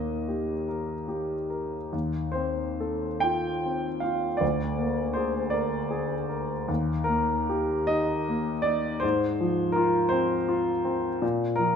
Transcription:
0.00 1.89 D#2 soft
0.00 0.52 A#3 soft
0.00 0.66 D#5 medium
0.28 0.93 G4 soft
0.68 1.34 A#4 soft
1.08 1.76 G4 soft
1.50 1.93 A#4 soft
1.92 4.37 D#2 soft
2.32 3.07 C4 soft
2.32 3.22 C5 medium
2.80 3.49 A4 soft
3.20 3.88 F4 soft
3.20 4.02 G5 medium
3.65 4.27 C4 soft
4.00 4.42 F4 soft
4.00 4.40 F5 soft
4.37 6.64 D2 soft
4.37 5.15 D5 medium
4.79 5.39 A#3 soft
5.13 5.77 G#4 soft
5.13 5.53 C5 medium
5.50 6.14 A#4 soft
5.50 6.67 D5 medium
5.91 6.53 G#4 soft
6.29 6.68 A#4 soft
6.68 8.99 D#2 medium
7.04 7.74 A#3 soft
7.04 7.88 A#4 medium
7.49 8.13 G4 soft
7.87 8.51 D#4 soft
7.87 8.65 D#5 medium
8.29 8.88 A#3 soft
8.62 9.03 D#4 soft
8.62 9.01 D5 medium
9.00 11.18 G#2 medium
9.00 9.75 C5 medium
9.41 9.98 F3 soft
9.72 10.35 F4 soft
9.72 10.11 A#4 medium
10.09 10.71 C4 soft
10.09 11.20 C5 medium
10.49 11.07 F4 soft
10.85 11.22 C4 soft
11.22 11.76 A#2 medium
11.56 11.76 F3 soft
11.56 11.76 A#4 medium

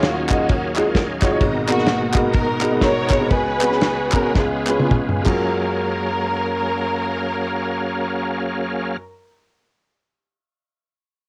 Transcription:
0.00 1.37 D#2 medium
0.00 1.37 D#3 medium
0.00 1.39 F#3 medium
0.00 1.39 C#4 medium
0.00 3.28 D#4 medium
0.00 0.45 F4 medium
0.00 1.39 G#4 medium
0.00 1.36 F5 medium
0.00 snare loud
0.00 ride medium
0.04 0.92 A#3 medium
0.04 0.92 C#4 medium
0.04 0.96 F#4 medium
0.29 0.43 G#3 medium
0.29 0.43 D#4 medium
0.29 0.43 F4 medium
0.29 0.43 F#4 medium
0.29 0.44 D#5 medium
0.29 kick loud
0.29 clap loud
0.29 ride medium
0.49 kick loud
0.49 ride medium
0.76 0.83 G#3 loud
0.76 0.83 D#4 medium
0.76 0.83 F4 medium
0.76 0.83 F#4 medium
0.76 0.83 G#4 loud
0.76 clap loud
0.76 ride medium
0.85 1.00 G#3 medium
0.85 1.00 D#4 medium
0.85 1.00 F4 medium
0.85 1.00 F#4 medium
0.85 1.00 A#4 medium
0.95 kick loud
0.95 snare loud
0.95 ride medium
1.21 1.28 G#3 medium
1.21 1.28 D#4 medium
1.21 1.29 F4 medium
1.21 1.29 F#4 medium
1.21 1.29 C#5 medium
1.21 kick loud
1.21 snare soft
1.21 clap medium
1.21 ride medium
1.30 1.40 G#3 medium
1.30 1.41 D#4 medium
1.30 1.41 F4 medium
1.30 1.41 F#4 medium
1.30 1.41 C#5 loud
1.40 3.27 G#1 medium
1.40 3.27 G#2 medium
1.40 3.30 B2 medium
1.40 5.24 G#3 medium
1.40 4.34 F#4 medium
1.40 3.30 A#4 medium
1.40 kick loud
1.40 ride medium
1.68 1.81 G#3 medium
1.68 2.59 A#3 medium
1.68 1.81 B3 medium
1.68 2.59 B3 medium
1.68 1.81 D#4 medium
1.68 1.81 F#4 medium
1.68 2.12 F#4 loud
1.68 1.82 A#4 loud
1.68 clap loud
1.68 ride medium
1.78 snare soft
1.86 snare loud
1.86 ride medium
2.14 2.27 G#3 medium
2.14 2.28 B3 medium
2.14 2.28 D#4 medium
2.14 2.28 F#4 medium
2.14 2.28 A#4 medium
2.14 kick loud
2.14 clap loud
2.14 ride medium
2.33 3.27 D#4 medium
2.33 2.81 F#4 medium
2.33 2.78 A#4 loud
2.33 kick loud
2.33 ride medium
2.61 2.68 G#3 medium
2.61 2.68 B3 medium
2.61 2.69 D#4 medium
2.61 2.69 F#4 medium
2.61 2.69 A#4 medium
2.61 clap loud
2.61 ride medium
2.71 2.87 G#3 medium
2.71 2.87 B3 medium
2.71 2.87 D#4 medium
2.71 2.87 F#4 medium
2.71 2.87 A#4 medium
2.81 3.28 F#4 medium
2.81 3.28 A#4 medium
2.81 3.31 C#5 loud
2.81 kick loud
2.81 snare loud
2.81 ride medium
3.09 3.17 G#3 medium
3.09 3.17 B3 medium
3.09 3.17 D#4 medium
3.09 3.18 F#4 medium
3.09 3.18 G#4 medium
3.09 kick loud
3.09 snare soft
3.09 clap medium
3.09 ride medium
3.19 3.30 G#3 medium
3.19 3.30 B3 medium
3.19 3.31 D#4 medium
3.19 3.31 F#4 medium
3.19 3.31 A#4 medium
3.30 4.31 C#2 medium
3.30 4.31 C#3 medium
3.30 5.25 B3 medium
3.30 5.25 C#4 medium
3.30 4.32 F#4 medium
3.30 4.31 G#4 medium
3.30 4.13 B4 loud
3.30 5.25 B4 medium
3.30 kick loud
3.30 ride medium
3.60 3.75 G#3 medium
3.60 3.75 B3 medium
3.60 3.75 C#4 medium
3.60 3.76 F#4 medium
3.60 3.76 B4 medium
3.60 clap loud
3.60 ride medium
3.72 snare soft
3.81 snare loud
3.81 ride medium
4.12 4.28 G#3 medium
4.12 4.28 B3 medium
4.12 4.29 C#4 medium
4.12 4.29 F#4 medium
4.12 4.29 A#4 medium
4.12 4.36 A#4 medium
4.12 kick loud
4.12 clap loud
4.12 ride medium
4.34 5.22 C#2 medium
4.34 5.22 C#3 medium
4.34 5.23 B3 medium
4.34 5.23 F4 medium
4.34 5.27 F4 medium
4.34 5.27 G#4 medium
4.34 kick loud
4.34 snare medium
4.67 4.76 G#3 medium
4.67 4.76 B3 medium
4.67 4.76 C#4 medium
4.67 4.77 F4 medium
4.67 4.77 B4 medium
4.67 clap medium
4.78 4.97 G#3 medium
4.78 4.97 B3 medium
4.78 4.98 C#4 medium
4.78 4.98 F4 medium
4.78 4.98 G#4 medium
4.78 high tom medium
4.91 kick loud
4.91 mid tom medium
5.09 mid tom medium
5.22 8.95 F#2 medium
5.22 8.92 G#3 medium
5.22 8.94 F4 medium
5.22 8.94 A#4 medium
5.22 clap medium
5.26 8.97 F#3 medium
5.26 8.97 A#3 medium
5.26 8.96 C#4 medium
5.26 8.96 F#4 medium
5.26 8.97 G#4 medium
5.26 8.99 A#4 medium
5.26 8.97 F5 medium
5.26 kick medium
5.26 crash medium

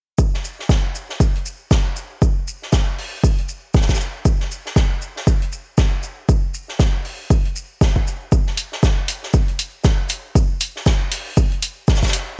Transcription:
0.18 kick loud
0.18 shaker medium
0.34 snare soft
0.44 shaker medium
0.59 snare soft
0.69 kick loud
0.69 snare loud
0.69 shaker medium
0.95 shaker medium
1.09 snare medium
1.20 kick loud
1.20 shaker medium
1.35 closed hi-hat soft
1.46 shaker medium
1.71 kick loud
1.71 snare loud
1.71 shaker medium
1.96 shaker medium
2.22 kick loud
2.22 shaker medium
2.48 shaker medium
2.62 snare soft
2.72 kick loud
2.72 snare loud
2.72 shaker medium
2.98 open hi-hat medium
3.24 kick loud
3.24 shaker medium
3.38 closed hi-hat soft
3.49 shaker medium
3.74 kick loud
3.74 snare medium
3.74 shaker medium
3.82 snare medium
3.82 shaker medium
3.89 kick medium
3.89 snare medium
3.89 shaker medium
3.94 snare medium
3.94 shaker medium
4.00 shaker medium
4.25 kick loud
4.25 shaker medium
4.40 snare soft
4.51 shaker medium
4.66 snare medium
4.76 kick loud
4.76 snare loud
4.76 shaker medium
5.02 shaker medium
5.16 snare medium
5.27 kick loud
5.27 shaker medium
5.42 closed hi-hat soft
5.52 shaker medium
5.78 kick loud
5.78 snare loud
5.78 shaker medium
6.03 shaker medium
6.29 kick loud
6.29 shaker medium
6.54 shaker medium
6.68 snare soft
6.79 kick loud
6.79 snare loud
6.79 shaker medium
7.05 open hi-hat medium
7.30 kick loud
7.30 shaker medium
7.45 closed hi-hat soft
7.56 shaker medium
7.81 kick loud
7.81 snare loud
7.81 shaker medium
7.96 kick medium
8.07 shaker medium
8.32 kick loud
8.32 shaker medium
8.46 snare soft
8.57 open hi-hat loud
8.57 shaker medium
8.72 snare medium
8.83 kick loud
8.83 snare loud
8.83 shaker medium
9.08 open hi-hat loud
9.08 shaker medium
9.23 snare soft
9.33 kick loud
9.33 shaker medium
9.48 closed hi-hat soft
9.59 open hi-hat loud
9.59 shaker medium
9.84 kick loud
9.84 snare loud
9.84 shaker medium
10.09 open hi-hat loud
10.09 shaker medium
10.35 kick loud
10.35 shaker medium
10.60 open hi-hat loud
10.60 shaker medium
10.76 snare soft
10.86 kick loud
10.86 snare loud
10.86 shaker medium
11.12 open hi-hat medium
11.37 kick loud
11.37 shaker medium
11.52 closed hi-hat soft
11.62 open hi-hat loud
11.62 shaker medium
11.87 kick loud
11.87 snare medium
11.87 shaker medium
11.95 snare medium
11.95 shaker medium
12.03 kick medium
12.03 snare medium
12.03 shaker medium
12.08 snare medium
12.08 shaker medium
12.13 open hi-hat loud
12.13 shaker medium

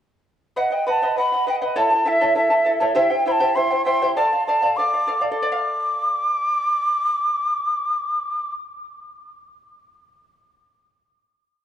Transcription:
0.56 0.71 B4 medium
0.56 0.71 D#5 medium
0.56 0.69 F#5 medium
0.56 0.75 F#5 medium
0.71 0.87 D#5 soft
0.71 0.86 F#5 soft
0.71 0.87 G5 medium
0.87 1.02 B4 medium
0.87 1.02 D#5 medium
0.87 1.01 F#5 medium
0.87 1.16 A5 medium
1.02 1.15 B4 soft
1.02 1.17 D#5 soft
1.02 1.17 F#5 soft
1.17 1.32 B4 soft
1.17 1.32 D#5 medium
1.17 1.31 F#5 medium
1.17 1.45 B5 medium
1.32 1.46 D#5 soft
1.32 1.47 F#5 soft
1.46 1.61 B4 soft
1.46 1.61 D#5 soft
1.46 1.60 F#5 medium
1.46 1.56 G5 medium
1.61 1.76 B4 soft
1.61 1.76 D#5 medium
1.61 1.76 F#5 medium
1.76 1.91 E4 medium
1.76 1.90 A4 medium
1.76 1.91 C#5 medium
1.76 1.91 E5 medium
1.76 1.89 A5 medium
1.76 2.10 A5 medium
1.90 2.04 E4 soft
1.90 2.05 A4 soft
1.90 2.06 A5 medium
2.05 2.20 E4 soft
2.05 2.20 A4 medium
2.05 2.21 E5 medium
2.05 2.37 E5 medium
2.05 2.20 A5 medium
2.21 2.34 E4 soft
2.21 2.34 A4 medium
2.21 2.37 C#5 soft
2.21 2.34 E5 medium
2.21 2.35 A5 soft
2.35 2.50 E4 medium
2.35 2.49 A4 medium
2.35 2.51 E5 soft
2.35 2.79 E5 medium
2.35 2.49 A5 medium
2.50 2.64 E4 soft
2.50 2.64 A4 soft
2.50 2.65 A5 soft
2.64 2.80 E4 medium
2.64 2.80 A4 medium
2.64 2.79 E5 medium
2.64 2.79 A5 medium
2.80 2.94 E4 medium
2.80 2.95 A4 medium
2.80 2.94 C#5 soft
2.80 2.94 E5 medium
2.80 2.95 A5 medium
2.95 3.10 E4 medium
2.95 3.11 G4 medium
2.95 3.10 C5 medium
2.95 3.11 E5 medium
2.95 3.12 E5 medium
2.95 3.09 G5 medium
3.10 3.25 E4 soft
3.10 3.26 C5 soft
3.10 3.26 G5 soft
3.10 3.26 G5 medium
3.26 3.39 E4 medium
3.26 3.39 C5 medium
3.26 3.40 E5 soft
3.26 3.39 G5 medium
3.26 3.33 B5 medium
3.32 3.57 A5 medium
3.40 3.55 E4 soft
3.40 3.56 G4 medium
3.40 3.56 C5 medium
3.40 3.54 E5 soft
3.40 3.56 G5 medium
3.55 3.71 E4 medium
3.55 3.71 C5 medium
3.55 3.71 E5 medium
3.55 3.69 G5 medium
3.55 3.85 C6 medium
3.71 3.84 E4 soft
3.71 3.85 C5 soft
3.71 3.85 G5 medium
3.85 4.01 E4 soft
3.85 4.01 C5 medium
3.85 4.01 E5 medium
3.85 4.01 G5 medium
3.85 4.14 C6 medium
4.02 4.16 E4 soft
4.02 4.17 G4 soft
4.02 4.16 C5 medium
4.02 4.17 E5 soft
4.02 4.17 G5 medium
4.16 4.32 A4 medium
4.16 4.32 D5 medium
4.16 4.31 F5 medium
4.16 4.44 A5 medium
4.33 4.47 D5 soft
4.33 4.47 F5 soft
4.46 4.62 A4 soft
4.46 4.62 D5 medium
4.46 4.61 F5 medium
4.46 4.78 A5 medium
4.62 4.77 A4 soft
4.62 4.77 D5 medium
4.62 4.77 F5 medium
4.76 4.92 A4 soft
4.76 4.93 D5 soft
4.76 4.92 F5 medium
4.76 5.22 D6 medium
4.93 5.06 D5 soft
4.93 5.07 F5 soft
5.07 5.21 A4 medium
5.07 5.20 D5 medium
5.07 5.20 F5 medium
5.21 5.30 A4 soft
5.21 5.31 D5 soft
5.21 5.36 F5 medium
5.32 9.25 A4 medium
5.37 8.53 D6 medium
5.42 9.30 D5 medium
5.52 9.35 F5 medium

